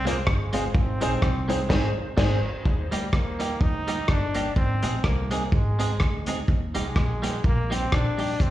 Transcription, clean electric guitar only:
0.05 G#3 C4 F4 G#4
0.53 G#3 C4 F4 G#4
1.01 G#3 C4 D#4 G#4
1.22 muted clean electric guitar stroke
1.48 G#3 C4 D#4 G#4
1.69 G#3 C4 D#4 G#4
2.17 G#3 C4 D#4 G#4
2.91 G3 A#3 D#4 G4
3.12 muted clean electric guitar stroke
3.39 G3 A#3 D#4 G4
3.87 G3 A#3 D#4 G4
4.35 G3 A#3 D#4 G4
4.83 G#3 C4 D#4 G#4
5.04 muted clean electric guitar stroke
5.31 G#3 C4 D#4 G#4
5.79 G#3 C4 D#4 G#4
6.27 G#3 C4 D#4 G#4
6.74 G3 A#3 D#4 G4
6.96 muted clean electric guitar stroke
7.22 G3 A#3 D#4 G4
7.70 G3 A#3 D#4 G4
8.18 G3 A#3 D#4 G4

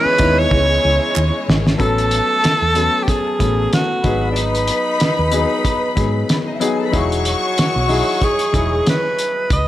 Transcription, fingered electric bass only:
0.06 muted fingered electric bass stroke
0.20 D#2
0.52 C#2
0.85 C#2
1.17 D#2
1.48 G#1
1.80 A1
2.45 muted fingered electric bass stroke
2.62 E2
3.41 A1
4.05 G#1
5.02 muted fingered electric bass stroke
5.19 D#2
5.97 G#2
6.94 E1
7.59 muted fingered electric bass stroke
7.76 B1
8.54 E1
9.51 C#2

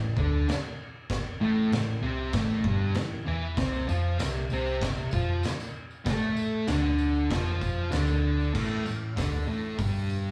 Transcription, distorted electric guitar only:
Already playing: A2
0.18 D3 D4
0.49 muted distorted electric guitar stroke
1.41 A2 A3
1.73 A2
2.03 C3 C4
2.34 A2 A3
2.68 G2 G3
2.97 A2
3.27 E3 E4
3.58 C3 C4
3.88 F3 F4
4.19 C3
4.52 C3 C4
4.84 C3
5.13 F3 F4
5.44 muted distorted electric guitar stroke
6.05 A3 A4
6.67 D3 D4
7.31 F3 F4
7.91 D3 D4
8.54 A2 A3
8.86 A2
9.17 D3 D4
9.48 A2 A3
9.78 G2 G3

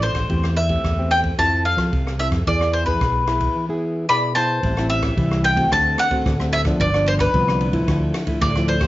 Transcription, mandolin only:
0.03 C5
0.57 E5
1.11 G5
1.39 A5
1.65 F5
2.19 E5
2.47 D5
2.73 C5
2.86 B4
4.09 D5 B5
4.35 C5 A5
4.90 E5
5.45 G5
5.73 A5
5.99 F#5
6.53 E5
6.81 D5
7.08 C5
7.20 B4
8.41 D5
8.68 C5

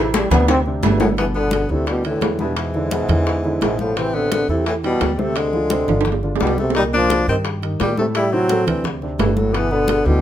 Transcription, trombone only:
0.00 E3
0.15 G3
0.32 B3
0.50 C4
0.83 G2
1.01 A2
1.18 E3
1.36 D3
1.71 C3
1.90 B2
2.07 A2
2.41 G2
2.58 G#2
3.63 G#2
3.81 A2
3.98 E3
4.15 D3
4.32 D3
4.50 C3
4.67 A2
4.85 B2
5.14 B2
5.20 C3
5.38 D3
6.42 B2
6.59 C3
6.76 G3
6.95 F3
7.29 D#3
7.82 A#2
7.98 C3
8.16 G3
8.33 F#3
8.68 E3
9.21 G2
9.37 A2
9.55 E3
9.72 D3
10.07 B2

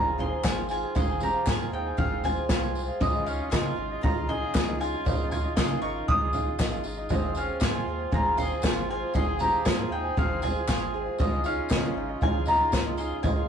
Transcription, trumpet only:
Already playing: F4
0.19 G#4
0.44 F4
0.70 F4
0.96 G#4
1.23 G4
1.49 F4
1.74 D#4
1.99 C4
2.26 F4
2.51 F4
3.01 G#3
3.28 C#4
3.52 F4
4.04 F4
4.30 G#4
4.81 F4
5.31 F4
5.57 G#4
5.83 A#4
6.09 G#4
7.13 C4
7.37 C#4
7.63 F4
8.14 F4
8.40 G#4
8.65 F4
8.91 F4
9.16 G#4
9.42 G4
9.66 F4
9.93 D#4
10.17 C4
10.43 F4
10.68 F4
11.19 G#3
11.44 C#4
12.21 F4
12.46 F4
12.97 G#4
13.23 F4

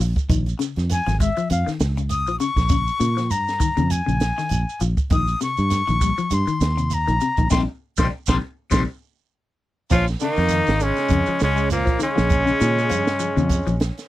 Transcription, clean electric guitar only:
0.00 F3
0.30 D#3
0.59 C#3
1.07 F3
1.20 G#3
1.37 F3
1.66 D#3
1.97 C#3
2.28 F3
2.40 C#3
2.70 C#3
3.00 C#3
3.17 F3
3.60 D#3
3.77 C#3
4.06 C#3
4.38 D#3
4.81 F3
5.12 D#3
5.41 C3
5.87 D#3
6.01 G3
6.18 F3
6.47 D#3
6.77 C3
7.07 D#3
7.22 C3
7.38 D#3
7.50 C3 D#3 G3
7.98 C3 D#3 G3
8.28 C3 D#3 G3
8.71 C3 D#3 G3
9.91 F3
10.22 C#3
10.39 muted clean electric guitar stroke
10.52 D#3
11.11 C#3
11.28 F3
11.56 G#3
11.86 F3
11.99 D#3
12.16 F3
12.46 C#3
12.60 D#3
12.90 F3
13.20 F3
13.36 C#3
13.67 F3

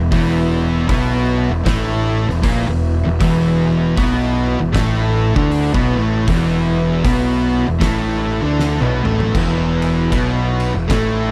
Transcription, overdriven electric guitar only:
0.00 E2
0.12 E2 E3
0.89 B2 B3
1.51 E2
1.66 A2 A3
2.29 E2
2.43 A#2 A#3
2.68 E2
3.05 E2
3.20 E2 E3
3.96 B2 B3
4.59 E2
4.74 A2 A3
5.36 D3 D4
5.73 B2 B3
5.98 A2 A3
6.27 E2 E3
7.05 B2 B3
7.67 E2
7.81 A2 A3
8.43 D3 D4
8.81 B2 B3
9.05 A2 A3
9.34 E2 E3
10.11 B2 B3
10.73 E2
10.88 A2 A3

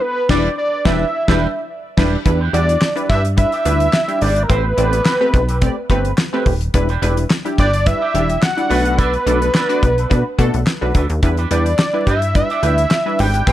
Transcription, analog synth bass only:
0.29 E1
0.86 E1
1.28 E1
1.98 E1
2.26 E2
2.53 E2
3.09 G2
3.65 D2
4.22 G#1
4.50 A1
4.78 A1
5.34 B1
5.90 G1
6.46 D#1
6.74 E1
7.02 E1
7.58 G1
8.14 E1
8.70 B1
9.27 B1
9.83 B1
10.11 B2
10.39 B2
10.54 B1
10.82 B1
10.95 D2
11.10 D#2
11.23 E2
11.51 E2
12.07 G2
12.63 D2
13.19 G#1
13.47 A1

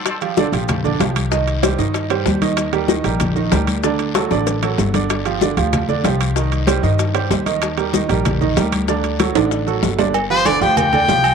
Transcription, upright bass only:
0.52 A#1
1.00 C2
1.79 G2
2.26 D#2
3.04 A#1
3.52 D2
4.31 A1
4.78 G1
5.57 D2
6.04 C2
6.83 G2
7.31 D#2
8.10 A#1
8.57 D2
9.35 A1
9.83 G1
10.61 D2
11.08 C2

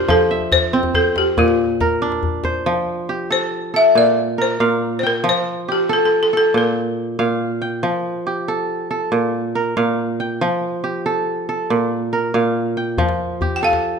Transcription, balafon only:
0.10 A4
0.52 C5
0.95 A4
1.18 G4
1.39 F4
3.32 C5
3.76 E5
3.98 D5
4.42 C5
4.99 C5
5.07 A#4
5.29 C5
5.72 G4
5.93 A4
6.05 A4
6.23 A4
6.37 A4
6.58 A#4
13.56 G5
13.64 F5

